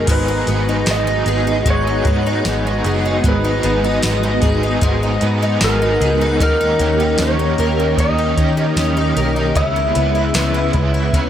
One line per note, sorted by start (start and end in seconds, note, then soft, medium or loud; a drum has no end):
0.00 0.44 D#3 medium
0.00 0.28 D#4 soft
0.00 1.27 G#4 medium
0.00 0.11 A#4 medium
0.07 0.43 G#1 loud
0.07 0.47 G#2 medium
0.07 1.65 G#2 medium
0.07 0.48 D#3 medium
0.07 0.48 F#3 medium
0.07 6.36 G#3 medium
0.07 6.35 B3 medium
0.07 0.47 B3 medium
0.07 6.35 D#4 medium
0.07 0.46 D#4 medium
0.07 6.35 F#4 medium
0.07 0.45 G#4 medium
0.07 kick loud
0.07 closed hi-hat medium
0.07 crash loud
0.11 0.91 B4 loud
0.28 0.68 D#4 medium
0.47 0.83 G#1 medium
0.47 0.85 F#3 soft
0.47 0.87 B3 medium
0.47 0.86 B3 soft
0.47 0.87 D#4 medium
0.47 0.87 G#4 medium
0.47 closed hi-hat medium
0.65 1.07 D#4 medium
0.65 3.39 F#5 medium
0.86 1.22 G#1 medium
0.86 1.27 F#3 medium
0.86 1.27 B3 medium
0.86 2.06 B3 medium
0.86 1.26 D#4 medium
0.86 1.25 G#4 medium
0.86 snare loud
0.86 closed hi-hat medium
0.86 tambourine medium
0.91 1.71 D#5 loud
1.07 1.47 D#4 medium
1.26 1.61 G#1 loud
1.26 1.66 F#3 soft
1.26 1.66 B3 soft
1.26 1.66 D#4 medium
1.26 1.66 G#4 medium
1.26 2.85 G#4 medium
1.26 closed hi-hat medium
1.47 1.87 D#4 medium
1.66 2.01 G#1 loud
1.66 2.06 G#2 medium
1.66 3.24 G#2 medium
1.66 2.06 D#3 medium
1.66 2.06 F#3 medium
1.66 2.06 B3 medium
1.66 2.06 D#4 medium
1.66 2.04 G#4 medium
1.66 kick medium
1.66 closed hi-hat medium
1.70 3.31 C#5 loud
1.87 2.26 D#4 medium
2.05 2.40 G#2 loud
2.05 2.43 F#3 soft
2.05 2.45 B3 medium
2.05 2.44 B3 soft
2.05 2.45 D#4 soft
2.05 2.45 G#4 medium
2.05 kick medium
2.05 closed hi-hat medium
2.27 2.66 D#4 medium
2.27 5.02 D#5 medium
2.44 2.80 G#1 loud
2.44 2.84 F#3 medium
2.44 2.85 B3 medium
2.44 3.62 B3 medium
2.44 2.84 D#4 medium
2.44 2.82 G#4 medium
2.44 snare loud
2.44 closed hi-hat medium
2.44 tambourine soft
2.67 3.05 D#4 medium
2.84 3.20 F#1 medium
2.84 3.23 F#3 soft
2.84 3.23 B3 soft
2.84 3.24 D#4 medium
2.84 3.24 G#4 medium
2.84 4.42 G#4 medium
2.84 closed hi-hat medium
3.06 3.44 D#4 medium
3.23 3.59 G#1 loud
3.23 3.63 G#2 medium
3.23 4.82 G#2 medium
3.23 3.64 D#3 medium
3.23 3.64 F#3 medium
3.23 3.63 B3 medium
3.23 3.62 D#4 medium
3.23 3.61 G#4 medium
3.23 kick loud
3.23 closed hi-hat medium
3.29 4.41 B4 medium
3.45 3.84 D#4 medium
3.62 3.99 G#1 loud
3.62 4.00 F#3 soft
3.62 4.03 B3 medium
3.62 4.02 B3 soft
3.62 4.02 D#4 medium
3.62 4.02 G#4 medium
3.62 closed hi-hat medium
3.84 4.23 D#4 medium
4.02 4.39 G#1 medium
4.02 4.42 F#3 medium
4.02 4.42 B3 medium
4.02 5.21 B3 medium
4.02 4.41 D#4 medium
4.02 4.40 G#4 medium
4.02 snare loud
4.02 closed hi-hat medium
4.02 tambourine medium
4.23 4.63 D#4 medium
4.41 4.77 G#1 loud
4.41 4.82 F#3 soft
4.41 4.82 B3 medium
4.41 4.82 D#4 medium
4.41 4.81 G#4 medium
4.41 6.00 G#4 medium
4.41 kick loud
4.41 closed hi-hat medium
4.63 5.02 D#4 medium
4.81 5.17 G#1 loud
4.81 5.21 G#2 medium
4.81 6.48 G#2 loud
4.81 5.22 D#3 medium
4.81 5.22 F#3 medium
4.81 5.21 B3 medium
4.81 5.21 D#4 medium
4.81 5.19 G#4 loud
4.81 kick loud
4.81 closed hi-hat medium
5.03 5.42 D#4 medium
5.21 5.57 G#2 loud
5.21 5.60 F#3 medium
5.21 5.61 B3 medium
5.21 5.60 B3 medium
5.21 5.61 D#4 medium
5.21 5.61 G#4 medium
5.21 closed hi-hat medium
5.43 5.81 D#4 medium
5.49 6.76 F#5 medium
5.61 5.96 G#1 loud
5.61 6.01 F#3 medium
5.61 6.01 B3 medium
5.61 6.49 B3 medium
5.61 6.00 D#4 medium
5.61 5.99 G#4 medium
5.61 6.42 A#4 medium
5.61 snare loud
5.61 closed hi-hat medium
5.61 tambourine medium
5.82 6.21 D#4 medium
6.00 6.40 C#2 medium
6.00 6.40 F#3 soft
6.00 6.41 B3 soft
6.00 6.41 D#4 medium
6.00 6.40 G#4 medium
6.00 6.48 G#4 medium
6.00 closed hi-hat medium
6.21 6.60 D#4 medium
6.38 6.75 D#2 loud
6.38 9.52 D#3 medium
6.38 6.79 D#3 medium
6.38 7.97 D#3 medium
6.38 9.52 A#3 medium
6.38 6.80 A#3 medium
6.38 9.52 C#4 medium
6.38 6.79 C#4 medium
6.38 9.52 G4 medium
6.38 kick loud
6.38 closed hi-hat medium
6.42 6.78 G4 medium
6.42 7.23 A#4 medium
6.61 6.99 D#4 medium
6.79 7.15 D#2 loud
6.79 7.18 A#3 soft
6.79 7.20 C#4 medium
6.79 7.19 C#4 medium
6.79 7.19 G4 medium
6.79 closed hi-hat medium
7.00 7.38 D#4 medium
7.18 7.54 D#2 loud
7.18 7.58 D#3 medium
7.18 7.59 A#3 medium
7.18 8.38 C#4 medium
7.18 7.59 C#4 medium
7.18 7.57 G4 medium
7.18 snare loud
7.18 closed hi-hat medium
7.18 tambourine medium
7.22 8.00 C#5 medium
7.39 7.79 D#4 medium
7.58 7.94 D#2 loud
7.58 7.97 A#3 soft
7.58 7.97 C#4 soft
7.58 7.98 G4 medium
7.58 9.15 A#4 medium
7.58 closed hi-hat soft
7.80 8.17 D#4 medium
7.97 8.33 D#2 loud
7.97 8.37 D#3 medium
7.97 9.56 D#3 loud
7.97 8.37 A#3 medium
7.97 8.38 C#4 medium
7.97 8.36 G4 medium
7.97 9.56 D#5 loud
7.97 kick loud
7.97 closed hi-hat medium
8.18 8.56 D#4 medium
8.37 8.72 D#3 loud
8.37 8.77 A#3 soft
8.37 8.76 C#4 medium
8.37 8.78 C#4 soft
8.37 8.77 G4 medium
8.37 kick medium
8.37 closed hi-hat medium
8.57 8.96 D#4 medium
8.77 9.12 D#2 loud
8.77 9.16 D#3 medium
8.77 9.17 A#3 medium
8.77 9.95 C#4 medium
8.77 9.15 C#4 medium
8.77 9.14 G4 medium
8.77 snare loud
8.77 closed hi-hat medium
8.77 tambourine medium
8.97 9.35 D#4 medium
9.15 9.51 B1 medium
9.15 9.56 A#3 medium
9.15 9.56 C#4 medium
9.15 9.55 G4 medium
9.15 9.64 A#4 medium
9.15 closed hi-hat medium
9.36 9.64 D#4 medium
9.54 9.91 C#2 loud
9.54 11.30 C#3 medium
9.54 9.95 C#3 medium
9.54 11.13 C#3 medium
9.54 11.30 G#3 medium
9.54 9.96 G#3 medium
9.54 11.30 B3 medium
9.54 9.95 B3 medium
9.54 11.30 E4 medium
9.54 9.93 E4 medium
9.54 10.71 E5 loud
9.54 kick loud
9.54 closed hi-hat medium
9.76 10.14 E4 medium
9.95 10.31 C#2 medium
9.95 10.34 G#3 soft
9.95 10.35 B3 medium
9.95 10.34 B3 medium
9.95 10.35 E4 medium
9.95 closed hi-hat medium
10.15 10.53 E4 medium
10.34 10.70 C#2 medium
10.34 10.74 C#3 medium
10.34 10.74 G#3 medium
10.34 11.30 B3 medium
10.34 10.74 B3 medium
10.34 10.72 E4 medium
10.34 snare loud
10.34 closed hi-hat medium
10.34 tambourine medium
10.54 10.93 E4 medium
10.73 11.09 C#2 loud
10.73 11.12 G#3 medium
10.73 11.13 B3 medium
10.73 11.13 E4 medium
10.73 kick medium
10.73 closed hi-hat soft
10.80 11.30 B6 medium
10.94 11.30 E4 medium
11.13 11.30 C#2 loud
11.13 11.30 C#3 medium
11.13 11.30 G#3 medium
11.13 11.30 B3 medium
11.13 11.30 E4 loud
11.13 kick loud
11.13 closed hi-hat medium